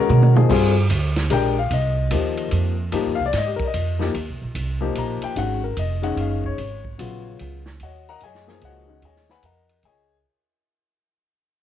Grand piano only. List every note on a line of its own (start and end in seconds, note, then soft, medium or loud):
0.00 0.32 G#3 medium
0.00 0.33 C#4 medium
0.00 0.33 F#4 medium
0.00 0.33 A#4 medium
0.35 0.48 F3 medium
0.35 0.48 A#3 medium
0.35 0.48 D#4 medium
0.35 0.49 G#4 medium
0.49 0.73 G3 medium
0.49 0.73 C4 medium
0.49 0.74 F4 medium
0.49 0.74 G#4 medium
1.30 1.54 G#3 medium
1.30 1.54 D4 medium
1.30 1.55 G4 medium
1.30 1.55 A#4 medium
1.30 1.57 G5 medium
1.59 1.72 F5 medium
1.73 2.49 D#5 medium
2.11 2.73 F3 medium
2.11 2.73 A#3 soft
2.11 2.74 D#4 medium
2.11 2.74 G4 medium
2.92 3.16 F3 medium
2.92 3.16 A#3 medium
2.92 3.17 D#4 medium
2.92 3.17 G4 medium
3.15 3.24 F5 medium
3.26 3.33 D5 medium
3.37 3.48 D#5 medium
3.46 3.59 G4 medium
3.56 3.65 A#4 medium
3.63 3.65 D5 soft
3.67 4.05 D#5 medium
3.99 4.12 F3 medium
3.99 4.13 A#3 medium
3.99 4.13 D#4 medium
3.99 4.13 G4 medium
4.81 5.33 F3 medium
4.81 5.33 A#3 medium
4.81 5.34 D#4 medium
4.81 5.34 G4 medium
4.98 5.23 A#5 medium
5.24 5.37 G5 medium
5.36 5.60 D#3 medium
5.36 5.60 G#3 medium
5.36 5.60 C#4 medium
5.36 5.61 F#4 medium
5.36 5.63 F#5 medium
5.64 5.77 A#4 medium
5.79 6.04 D#5 medium
6.02 6.55 D#3 medium
6.02 6.55 G#3 medium
6.02 6.55 C#4 medium
6.02 6.55 D#4 medium
6.02 6.17 F#5 medium
6.20 6.45 F5 medium
6.46 7.36 C#5 medium
6.98 7.60 C#3 soft
6.98 7.61 F#3 soft
6.98 7.61 B3 soft
6.98 7.61 F4 medium
7.83 8.08 F#4 medium
7.83 8.08 C#5 medium
7.83 8.08 D#5 medium
7.83 8.07 F#5 medium
8.09 8.22 A#4 medium
8.09 8.22 D#5 medium
8.09 8.22 F#5 medium
8.09 8.21 A#5 loud
8.24 8.47 G#4 medium
8.24 8.60 C#5 medium
8.24 8.60 D#5 medium
8.24 8.60 G#5 medium
8.47 8.85 F3 medium
8.47 8.85 A#3 medium
8.47 8.86 D#4 medium
8.47 8.86 G#4 medium
8.65 9.01 F#4 medium
8.65 9.01 C#5 medium
8.65 9.01 D#5 medium
8.65 9.01 F#5 medium
8.87 9.00 D#3 medium
8.87 9.01 G#3 medium
8.87 9.01 C#4 medium
8.87 9.01 D#4 medium
9.05 9.29 G#4 medium
9.05 9.29 C#5 medium
9.05 9.30 D#5 medium
9.05 9.29 G#5 medium
9.31 9.44 B4 medium
9.31 9.44 F#5 medium
9.31 9.44 G#5 medium
9.31 9.43 B5 medium
9.45 9.82 A#4 medium
9.45 9.82 D#5 medium
9.45 9.82 F#5 medium
9.45 9.82 A#5 medium
9.85 10.16 G#4 medium
9.85 10.16 C#5 medium
9.85 10.16 D#5 medium
9.85 10.16 G#5 medium